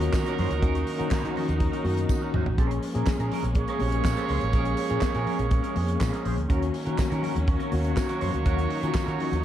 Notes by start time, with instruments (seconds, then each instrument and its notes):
Already playing: tine electric piano D#3 A#3 C#4 F4 F#4, string section D#3 C#4 F#4, horn section F#3 D#4 A#4
0.01 muted clean electric guitar stroke, closed hi-hat
0.13 fingered electric bass D#3, muted clean electric guitar stroke, kick, snare, clap, tambourine, high conga
0.26 clean electric guitar C#4 F#4 A#4, closed hi-hat
0.38 fingered electric bass F#2, clean electric guitar C#4 F#4 C5, open hi-hat, low conga
0.51 fingered electric bass D2, muted clean electric guitar stroke, closed hi-hat
0.62 fingered electric bass D#2, tine electric piano D#3 A#3 C#4 F#4, clean electric guitar C#4 F#4 A#4, string section D#4, kick, closed hi-hat, muted conga
0.75 muted clean electric guitar stroke, closed hi-hat, muted conga
0.87 muted clean electric guitar stroke, open hi-hat
0.97 tine electric piano D#3 A#3 C#4 F#4, fingered electric bass D#3, clean electric guitar C#4 F#4 A#4, closed hi-hat
1.11 muted clean electric guitar stroke, kick, snare, clap, tambourine, muted conga, high conga
1.23 fingered electric bass D#3, clean electric guitar C#4 F#4 A#4, closed hi-hat
1.35 clean electric guitar C#4 F#4 A#4, open hi-hat, low conga
1.48 fingered electric bass D#2, muted clean electric guitar stroke, closed hi-hat, low conga
1.60 muted clean electric guitar stroke, kick, closed hi-hat, muted conga
1.72 clean electric guitar C#4 F#4 A#4, closed hi-hat
1.83 fingered electric bass F#2, tine electric piano D#3 A#3 C#4 F#4, muted clean electric guitar stroke, open hi-hat, high conga
1.97 muted clean electric guitar stroke, closed hi-hat
2.09 fingered electric bass D#3, muted clean electric guitar stroke, kick, high tom, tambourine, high conga
2.20 clean electric guitar C#4 F#4 A#4, muted conga
2.34 fingered electric bass D#2, clean electric guitar C#4 F#4 C5, mid tom, low conga
2.46 fingered electric bass A1, muted clean electric guitar stroke, floor tom
2.57 fingered electric bass A#1, tine electric piano F3 A#3 C#4 G#4, string section G#3 A#3 C#4, clean electric guitar C#4 G#4 A#4, kick, closed hi-hat
2.71 muted clean electric guitar stroke, closed hi-hat, muted conga
2.83 muted clean electric guitar stroke, open hi-hat
2.93 fingered electric bass A#2, tine electric piano F3 A#3 C#4 G#4, clean electric guitar C#4 G#4 A#4, closed hi-hat
3.06 muted clean electric guitar stroke, kick, snare, clap, tambourine, muted conga, high conga
3.19 fingered electric bass A#2, clean electric guitar C#4 G#4 A#4, closed hi-hat
3.31 clean electric guitar C#4 G#4 A#4, open hi-hat, low conga
3.43 fingered electric bass A#1, muted clean electric guitar stroke, closed hi-hat, high conga, low conga
3.55 horn section A#3 G#4 C#5, muted clean electric guitar stroke, kick, closed hi-hat
3.68 clean electric guitar C#4 G#4 A#4, closed hi-hat
3.79 fingered electric bass A#1, tine electric piano F3 A#3 C#4 G4, muted clean electric guitar stroke, open hi-hat, high conga
3.87 tine electric piano G#4
3.92 muted clean electric guitar stroke, closed hi-hat
4.04 fingered electric bass A#2, muted clean electric guitar stroke, kick, snare, clap, tambourine, high conga
4.17 clean electric guitar C#4 G#4 A#4, closed hi-hat
4.29 fingered electric bass C#2, clean electric guitar C#4 G#4 C5, open hi-hat, low conga
4.41 fingered electric bass A1, muted clean electric guitar stroke, closed hi-hat
4.53 fingered electric bass A#1, tine electric piano F3 A#3 C#4 G#4, clean electric guitar C#4 G#4 A#4, kick, closed hi-hat
4.65 muted clean electric guitar stroke, closed hi-hat, muted conga
4.77 muted clean electric guitar stroke, open hi-hat
4.89 fingered electric bass A#2, tine electric piano F3 A#3 C#4 G#4, clean electric guitar C#4 G#4 A#4, closed hi-hat
5.01 muted fingered electric bass stroke, muted clean electric guitar stroke, kick, snare, clap, tambourine, high conga
5.14 fingered electric bass A#2, clean electric guitar C#4 G#4 A#4, closed hi-hat, muted conga
5.27 clean electric guitar C#4 G#4 A#4, open hi-hat, low conga
5.39 fingered electric bass A#1, muted clean electric guitar stroke, closed hi-hat, high conga, low conga
5.51 muted clean electric guitar stroke, kick, closed hi-hat
5.63 clean electric guitar C#4 G#4 A#4, closed hi-hat, muted conga
5.75 fingered electric bass F2, tine electric piano F3 A#3 C#4 G#4, muted clean electric guitar stroke, open hi-hat, high conga
5.88 muted clean electric guitar stroke, closed hi-hat
6.00 fingered electric bass A#2, muted clean electric guitar stroke, kick, snare, clap, tambourine, high conga
6.12 clean electric guitar C#4 G#4 A#4, closed hi-hat, muted conga
6.25 fingered electric bass A#1, clean electric guitar C#4 G#4 C5, open hi-hat, low conga
6.37 fingered electric bass D2, muted clean electric guitar stroke, closed hi-hat
6.49 fingered electric bass D#2, tine electric piano D#3 A#3 C#4 F#4, string section D#3 F#3 C#4, clean electric guitar C#4 F#4 A#4, kick, closed hi-hat, muted conga
6.61 muted clean electric guitar stroke, closed hi-hat, muted conga
6.74 muted clean electric guitar stroke, open hi-hat
6.85 tine electric piano D#3 A#3 C#4 F#4, fingered electric bass D#3, clean electric guitar C#4 F#4 A#4, closed hi-hat
6.97 muted clean electric guitar stroke, kick, snare, clap, tambourine, high conga
7.10 fingered electric bass D#3, clean electric guitar C#4 F#4 A#4, closed hi-hat, muted conga
7.23 clean electric guitar C#4 F#4 A#4, open hi-hat, low conga
7.35 fingered electric bass D#2, muted clean electric guitar stroke, closed hi-hat, high conga, low conga
7.47 horn section A#3 F#4 C#5, muted clean electric guitar stroke, kick, closed hi-hat, muted conga
7.59 clean electric guitar C#4 F#4 A#4, closed hi-hat, muted conga
7.72 fingered electric bass D#2, tine electric piano D#3 A#3 C#4 F#4, muted clean electric guitar stroke, open hi-hat, high conga
7.84 muted clean electric guitar stroke, closed hi-hat
7.96 fingered electric bass D#3, kick, snare, clap, tambourine, muted conga, high conga
8.08 clean electric guitar C#4 F#4 A#4, closed hi-hat, muted conga
8.21 fingered electric bass F#2, clean electric guitar C#4 F#4 C5, open hi-hat, low conga
8.33 fingered electric bass D2, muted clean electric guitar stroke, closed hi-hat
8.45 fingered electric bass D#2, tine electric piano D#3 A#3 C#4 F#4, clean electric guitar C#4 F#4 A#4, string section D#4, kick, closed hi-hat
8.58 muted clean electric guitar stroke, closed hi-hat, muted conga
8.69 muted clean electric guitar stroke, open hi-hat
8.82 tine electric piano D#3 A#3 C#4 F4, fingered electric bass D#3, clean electric guitar C#4 F#4 A#4, closed hi-hat
8.94 muted clean electric guitar stroke, kick, snare, clap, tambourine, high conga
9.06 fingered electric bass D#3, clean electric guitar C#4 F#4 A#4, closed hi-hat, muted conga
9.19 clean electric guitar C#4 F#4 A#4, open hi-hat, low conga
9.31 fingered electric bass D#2, muted clean electric guitar stroke, closed hi-hat, high conga, low conga